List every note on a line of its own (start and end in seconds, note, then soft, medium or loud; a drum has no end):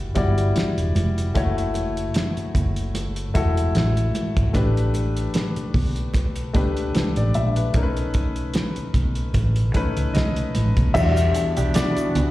0.00 0.15 G3 medium
0.00 0.15 E4 medium
0.00 0.16 F#4 medium
0.00 0.17 D5 medium
0.15 0.52 G1 medium
0.15 0.90 G3 medium
0.15 0.91 E4 medium
0.15 0.91 F#4 medium
0.15 0.92 D5 medium
0.15 kick medium
0.15 closed hi-hat medium
0.15 muted conga soft
0.15 low conga medium
0.38 closed hi-hat soft
0.56 snare loud
0.56 closed hi-hat medium
0.56 high conga medium
0.77 0.94 E1 medium
0.77 closed hi-hat soft
0.95 1.31 F1 medium
0.95 closed hi-hat medium
0.95 high conga medium
1.18 closed hi-hat soft
1.34 2.07 F#1 medium
1.34 2.36 A3 medium
1.34 2.37 E4 medium
1.34 2.37 F#4 medium
1.34 2.37 C#5 medium
1.34 kick medium
1.34 closed hi-hat medium
1.34 muted conga soft
1.58 closed hi-hat soft
1.74 closed hi-hat medium
1.74 muted conga soft
1.97 closed hi-hat soft
2.14 snare loud
2.14 closed hi-hat medium
2.14 high conga medium
2.37 muted fingered electric bass stroke soft
2.37 closed hi-hat soft
2.55 3.27 F#1 medium
2.55 kick medium
2.55 closed hi-hat medium
2.55 low conga medium
2.76 closed hi-hat soft
2.95 closed hi-hat medium
2.95 muted conga soft
3.16 closed hi-hat soft
3.34 3.71 E1 medium
3.34 4.10 A3 medium
3.34 4.10 E4 medium
3.34 4.10 F#4 medium
3.34 4.11 A4 medium
3.34 kick medium
3.34 closed hi-hat medium
3.34 muted conga soft
3.57 closed hi-hat soft
3.75 4.11 A1 medium
3.75 snare loud
3.75 closed hi-hat medium
3.75 high conga medium
3.97 closed hi-hat soft
4.15 closed hi-hat medium
4.15 high conga medium
4.37 4.53 G#1 medium
4.37 kick medium
4.37 closed hi-hat soft
4.53 5.26 A1 medium
4.53 5.56 A3 medium
4.53 5.56 D4 medium
4.53 5.56 G4 medium
4.53 5.57 B4 medium
4.53 kick medium
4.53 closed hi-hat medium
4.53 muted conga soft
4.77 closed hi-hat soft
4.94 closed hi-hat medium
4.94 muted conga soft
5.16 closed hi-hat soft
5.34 snare medium
5.34 closed hi-hat medium
5.34 high conga medium
5.56 muted fingered electric bass stroke soft
5.56 closed hi-hat soft
5.74 6.46 B1 medium
5.74 kick medium
5.74 open hi-hat soft
5.74 low conga medium
5.96 closed hi-hat soft
6.14 kick medium
6.14 closed hi-hat medium
6.14 muted conga soft
6.36 closed hi-hat medium
6.53 6.91 C#2 medium
6.53 7.29 A3 medium
6.53 7.30 D4 medium
6.53 7.30 G4 medium
6.53 6.93 B4 medium
6.53 kick medium
6.53 closed hi-hat medium
6.53 muted conga soft
6.53 low conga medium
6.77 closed hi-hat soft
6.95 7.15 B4 soft
6.95 snare loud
6.95 closed hi-hat medium
6.95 high conga medium
7.16 7.33 A1 medium
7.16 7.34 D5 medium
7.16 closed hi-hat medium
7.34 7.71 A#1 medium
7.34 7.55 E5 medium
7.34 closed hi-hat medium
7.34 high conga medium
7.56 7.81 B4 medium
7.56 closed hi-hat soft
7.74 8.46 B1 medium
7.74 8.76 A3 medium
7.74 8.76 C#4 medium
7.74 8.77 D#4 medium
7.74 7.83 A#4 medium
7.74 kick medium
7.74 closed hi-hat medium
7.74 muted conga soft
7.83 8.80 B4 medium
7.97 closed hi-hat soft
8.14 kick medium
8.14 closed hi-hat medium
8.36 closed hi-hat soft
8.54 snare medium
8.54 closed hi-hat medium
8.54 high conga medium
8.76 muted fingered electric bass stroke soft
8.76 closed hi-hat soft
8.94 9.30 B1 medium
8.94 kick medium
8.94 closed hi-hat medium
8.94 low conga medium
9.15 closed hi-hat soft
9.34 9.71 A1 medium
9.34 kick medium
9.34 closed hi-hat medium
9.34 muted conga soft
9.56 closed hi-hat medium
9.74 10.50 A3 medium
9.74 10.50 C#4 medium
9.74 10.50 D#4 medium
9.74 10.51 B4 medium
9.74 muted fingered electric bass stroke soft
9.74 kick medium
9.74 closed hi-hat medium
9.74 muted conga soft
9.97 10.13 C#2 medium
9.97 closed hi-hat soft
10.14 10.35 B1 medium
10.14 10.97 D#5 medium
10.14 snare loud
10.14 closed hi-hat medium
10.14 high conga medium
10.36 closed hi-hat medium
10.55 10.75 A1 medium
10.55 closed hi-hat medium
10.55 high conga medium
10.77 10.93 B1 medium
10.77 kick medium
10.77 closed hi-hat soft
10.94 11.31 E2 loud
10.94 12.31 E3 medium
10.94 11.49 G3 medium
10.94 11.17 G3 medium
10.94 12.31 G3 medium
10.94 12.31 B3 medium
10.94 11.49 D4 medium
10.94 12.31 D4 medium
10.94 11.18 D4 medium
10.94 12.31 F#4 medium
10.94 11.50 F#4 medium
10.94 11.18 F#4 medium
10.94 11.77 E5 loud
10.94 kick loud
10.94 crash medium
10.94 muted conga soft
10.94 shaker medium
11.17 closed hi-hat medium
11.17 shaker medium
11.35 muted clean electric guitar stroke soft
11.35 closed hi-hat medium
11.35 shaker soft
11.57 11.74 B1 medium
11.57 11.73 G3 soft
11.57 11.73 D4 soft
11.57 11.72 G4 medium
11.57 closed hi-hat soft
11.57 shaker soft
11.74 11.98 G3 medium
11.74 11.98 D4 medium
11.74 11.99 F#4 medium
11.74 12.31 D5 loud
11.74 snare loud
11.74 closed hi-hat medium
11.74 high conga medium
11.74 shaker medium
11.97 muted fingered electric bass stroke soft
11.97 closed hi-hat soft
11.97 shaker soft
12.15 12.31 C#2 medium
12.15 muted clean electric guitar stroke soft
12.15 closed hi-hat medium
12.15 low conga medium